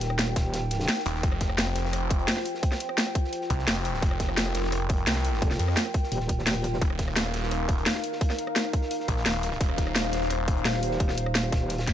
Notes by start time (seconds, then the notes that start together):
Already playing: D#1 D#4 A#4 G5
0.01 snare, closed hi-hat
0.10 cross-stick
0.19 snare, closed hi-hat
0.27 cross-stick
0.36 D#1, kick, snare, closed hi-hat
0.54 snare, closed hi-hat
0.71 snare, closed hi-hat
0.80 snare, closed hi-hat
0.88 snare, closed hi-hat
0.97 snare, closed hi-hat
1.05 D#1, snare, closed hi-hat, open hi-hat
1.15 snare
1.23 F1 F4 C5, kick, closed hi-hat
1.32 cross-stick
1.41 kick, snare, closed hi-hat
1.50 cross-stick
1.58 snare, closed hi-hat
1.67 cross-stick
1.75 F1, snare, closed hi-hat
1.85 snare
1.93 cross-stick, closed hi-hat
2.11 kick, closed hi-hat
2.19 closed hi-hat
2.27 snare, closed hi-hat
2.37 snare
2.45 closed hi-hat, open hi-hat
2.54 snare
2.63 kick, closed hi-hat
2.72 cross-stick, snare
2.80 closed hi-hat
2.89 cross-stick
2.98 snare, closed hi-hat
3.07 cross-stick
3.15 kick, closed hi-hat
3.24 snare
3.33 closed hi-hat
3.41 snare
3.50 C2, kick, closed hi-hat
3.59 snare
3.67 F1, snare, closed hi-hat, open hi-hat
3.84 snare, closed hi-hat, open hi-hat
3.94 snare
4.02 F1 A#4, kick, closed hi-hat
4.11 cross-stick
4.20 kick, snare, closed hi-hat
4.29 cross-stick
4.37 snare, closed hi-hat
4.46 cross-stick
4.55 F1, snare, closed hi-hat
4.63 snare
4.72 cross-stick, closed hi-hat
4.89 kick, closed hi-hat
4.97 closed hi-hat
5.06 C2, snare, closed hi-hat
5.16 snare
5.25 closed hi-hat, open hi-hat
5.34 snare
5.42 F1, kick, closed hi-hat
5.50 cross-stick, snare
5.59 F2, closed hi-hat
5.68 cross-stick
5.76 snare, closed hi-hat
5.86 cross-stick
5.94 kick, closed hi-hat
6.03 snare
6.12 D#1, closed hi-hat
6.20 snare
6.29 kick, closed hi-hat
6.39 snare
6.46 snare, closed hi-hat, open hi-hat
6.64 snare, closed hi-hat, open hi-hat
6.73 snare
6.82 D#1 D#4 A#4 F5, kick, closed hi-hat
6.90 cross-stick
6.99 kick, snare, closed hi-hat
7.08 cross-stick
7.16 snare, closed hi-hat
7.25 cross-stick
7.34 D#1, snare, closed hi-hat
7.43 snare
7.51 cross-stick, closed hi-hat
7.69 kick, closed hi-hat
7.78 closed hi-hat
7.86 snare, closed hi-hat
7.95 snare
8.04 closed hi-hat, open hi-hat
8.12 snare
8.21 kick, closed hi-hat
8.30 cross-stick, snare
8.39 closed hi-hat
8.47 cross-stick
8.56 snare, closed hi-hat
8.65 cross-stick
8.73 kick, closed hi-hat
8.82 snare
8.91 closed hi-hat
9.00 snare
9.08 A#1, kick, closed hi-hat
9.17 snare
9.25 D#1, snare, closed hi-hat, open hi-hat
9.43 snare, closed hi-hat, open hi-hat
9.51 snare
9.61 D#1 C5, kick, closed hi-hat
9.69 cross-stick
9.78 kick, snare, closed hi-hat
9.87 cross-stick
9.95 snare, closed hi-hat
10.04 cross-stick
10.13 D#1, snare, closed hi-hat
10.22 snare
10.30 cross-stick, closed hi-hat
10.48 kick, closed hi-hat
10.57 closed hi-hat
10.65 D#1, snare, closed hi-hat
10.74 snare
10.83 closed hi-hat, open hi-hat
10.91 snare
11.00 kick, closed hi-hat
11.09 cross-stick, snare
11.17 closed hi-hat
11.26 cross-stick
11.35 snare, closed hi-hat
11.44 cross-stick
11.52 D#1, kick, snare, closed hi-hat
11.70 snare, closed hi-hat
11.78 snare, closed hi-hat
11.87 kick, snare, closed hi-hat